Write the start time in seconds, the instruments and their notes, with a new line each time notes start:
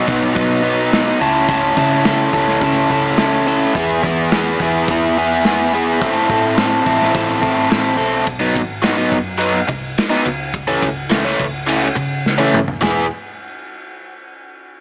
0.07 picked electric bass B1, overdriven electric guitar F#3 B3 D#4, kick
0.35 picked electric bass B1, overdriven electric guitar F#3 B3 D#4, kick, open hi-hat
0.63 overdriven electric guitar F#3 B3 D#4
0.93 overdriven electric guitar F#3 B3 D#4, snare, open hi-hat
1.20 picked electric bass C#2, overdriven electric guitar C#4 E4 A4
1.49 overdriven electric guitar C#4 E4 A4, kick, open hi-hat
1.77 picked electric bass C#3, overdriven electric guitar C#4 E4 A4, kick
2.05 overdriven electric guitar C#4 E4 A4, snare, open hi-hat
2.33 picked electric bass C#2, overdriven electric guitar C#4 E4 A4, kick
2.48 snare
2.61 picked electric bass C#2, overdriven electric guitar C#4 E4 A4, kick, open hi-hat
2.89 picked electric bass C#2, overdriven electric guitar C#4 E4 A4, kick
3.17 overdriven electric guitar C#4 E4 A4, snare, open hi-hat
3.47 overdriven electric guitar C#4 E4 A4
3.75 picked electric bass E2, overdriven electric guitar B3 E4 G#4, kick, open hi-hat
4.03 picked electric bass E2, overdriven electric guitar B3 E4 G#4, kick
4.32 overdriven electric guitar B3 E4 G#4, snare, open hi-hat
4.60 picked electric bass E2, overdriven electric guitar B3 E4 G#4, kick
4.88 picked electric bass E2, overdriven electric guitar B3 E4 G#4, kick, open hi-hat
5.18 overdriven electric guitar B3 E4 G#4
5.44 overdriven electric guitar B3 E4 G#4, snare, open hi-hat
5.74 overdriven electric guitar B3 E4 G#4
6.01 picked electric bass A1, overdriven electric guitar C4 E4 A4, kick, open hi-hat
6.29 picked electric bass A2, overdriven electric guitar C4 E4 A4, kick
6.57 overdriven electric guitar C4 E4 A4, snare, open hi-hat
6.86 picked electric bass A1, overdriven electric guitar C4 E4 A4, kick
7.02 snare
7.14 picked electric bass A1, overdriven electric guitar C4 E4 A4, kick, open hi-hat
7.41 picked electric bass G#1, overdriven electric guitar C4 E4 A4, kick
7.70 picked electric bass A1, overdriven electric guitar C4 E4 A4, snare, open hi-hat
7.97 picked electric bass B1, overdriven electric guitar C4 E4 A4
8.27 picked electric bass B1, kick, ride
8.40 overdriven electric guitar F#3 B3 D#4
8.56 picked electric bass G#1, kick, ride
8.82 overdriven electric guitar F#3 B3 D#4, snare, ride
8.97 overdriven electric guitar F#3 B3 D#4
9.12 picked electric bass F#2, kick, ride
9.38 overdriven electric guitar F#3 B3 D#4, ride
9.68 picked electric bass C2, muted overdriven electric guitar stroke, kick, ride
9.98 snare, ride
10.10 overdriven electric guitar F#3 B3 D#4, snare
10.26 picked electric bass C#2, ride
10.54 kick, ride
10.67 overdriven electric guitar E3 A3 C#4
10.82 picked electric bass C#2, kick, ride
11.10 overdriven electric guitar E3 A3 C#4, snare, ride
11.25 overdriven electric guitar E3 A3 C#4, snare
11.39 picked electric bass C#2, kick, ride
11.67 overdriven electric guitar E3 A3 C#4, ride
11.95 picked electric bass C#3, muted overdriven electric guitar stroke, kick, ride
12.26 snare
12.38 overdriven electric guitar E3 A3 C#4
12.54 mid tom
12.68 floor tom
12.81 picked electric bass E1, overdriven electric guitar E3 B3 E4 G#4, kick, snare